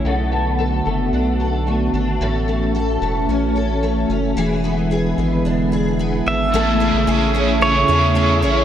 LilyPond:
<<
  \new Staff \with { instrumentName = "Pedal steel guitar" } { \time 4/4 \key a \major \tempo 4 = 111 r1 | r1 | r2. r8 e''8~ | e''2 cis''4. r8 | }
  \new Staff \with { instrumentName = "Overdriven electric guitar" } { \time 4/4 \key a \major r1 | r1 | r1 | <a cis' e' gis'>8 <cis' e' gis'>8 <a cis' e' gis'>8 <cis' e' gis'>8 <a cis' e' gis'>8 <cis' e' gis'>8 <a cis' e' gis'>8 <cis' e' gis'>8 | }
  \new Staff \with { instrumentName = "Synth texture" } { \time 4/4 \key a \major r1 | r1 | r1 | r8 cis'2 e'16 gis'16 <cis' b'>4 | }
  \new Staff \with { instrumentName = "Twelve-string acoustic guitar" } { \time 4/4 \key a \major <b, a'>8 a8 a'8 a8 d'8 a'8 a8 d'8 | <a, a'>8 a8 a'8 a8 cis'8 a'8 a8 cis'8 | <e gis'>8 b8 gis'8 b8 d'8 gis'8 b8 d'8 | a8 e'8 gis'8 cis'8 e'8 gis'8 e'8 cis'8 | }
  \new Staff \with { instrumentName = "Ambient pad" } { \time 4/4 \key a \major << { fis'1~ | fis'1 | <gis e'>1 | <e' gis'>1 | } \\ { <d a b>1 | <e cis'>1 | <d b>1 | <cis a>1 | } >> }
  \new Staff \with { instrumentName = "Analog synth bass" } { \clef bass \time 4/4 \key a \major b,,4. fis,,8 b,,4. gis,,8 | a,,4. e,,8 a,,4. fis,,8 | e,,4. gis,,8 e,,4. gis,,8 | a,,8. a,,16 a,,4. e,4 a,,8 | }
>>